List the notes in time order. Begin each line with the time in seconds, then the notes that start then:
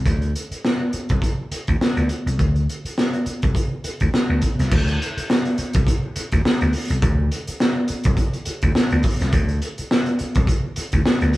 0.06 D2, kick, closed hi-hat
0.22 closed hi-hat
0.36 closed hi-hat
0.51 muted slap bass stroke, closed hi-hat
0.65 snare
0.93 muted slap bass stroke, closed hi-hat
1.09 C2, kick, closed hi-hat
1.22 kick, closed hi-hat
1.51 muted slap bass stroke, closed hi-hat
1.67 D2, kick, closed hi-hat
1.81 snare
1.97 D2, closed hi-hat
2.09 closed hi-hat
2.26 C2, closed hi-hat
2.39 D2, kick, closed hi-hat
2.56 closed hi-hat
2.69 closed hi-hat
2.85 muted slap bass stroke, closed hi-hat
2.98 snare
3.13 closed hi-hat
3.26 muted slap bass stroke, closed hi-hat
3.42 C2, kick, closed hi-hat
3.55 kick, closed hi-hat
3.84 muted slap bass stroke, closed hi-hat
4.00 D2, kick, closed hi-hat
4.14 snare
4.30 D2
4.42 kick, closed hi-hat
4.59 C2, snare, closed hi-hat
4.71 D2, kick, crash
4.88 closed hi-hat
5.02 closed hi-hat
5.17 muted slap bass stroke, closed hi-hat
5.30 snare
5.45 closed hi-hat
5.58 muted slap bass stroke, closed hi-hat
5.73 C2, kick, closed hi-hat
5.87 kick, closed hi-hat
6.16 muted slap bass stroke, closed hi-hat
6.32 D2, kick, closed hi-hat
6.45 muted slap bass stroke, snare
6.61 D2, closed hi-hat
6.73 open hi-hat
6.90 C2, closed hi-hat
7.02 D2, kick, closed hi-hat
7.32 closed hi-hat
7.47 muted slap bass stroke, closed hi-hat
7.60 snare
7.88 muted slap bass stroke, closed hi-hat
8.04 C2, kick, closed hi-hat
8.17 kick, closed hi-hat
8.33 closed hi-hat
8.45 muted slap bass stroke, closed hi-hat
8.62 D2, kick, closed hi-hat
8.75 muted slap bass stroke, snare
8.90 D2, closed hi-hat
9.03 kick, open hi-hat
9.20 C2, snare, closed hi-hat
9.33 D2, kick, closed hi-hat
9.48 closed hi-hat
9.62 closed hi-hat
9.78 muted slap bass stroke, closed hi-hat
9.91 snare
10.06 closed hi-hat
10.19 muted slap bass stroke, closed hi-hat
10.35 C2, kick, closed hi-hat
10.47 kick, closed hi-hat
10.76 muted slap bass stroke, closed hi-hat
10.92 D2, kick, closed hi-hat
11.06 snare
11.21 D2, closed hi-hat
11.33 open hi-hat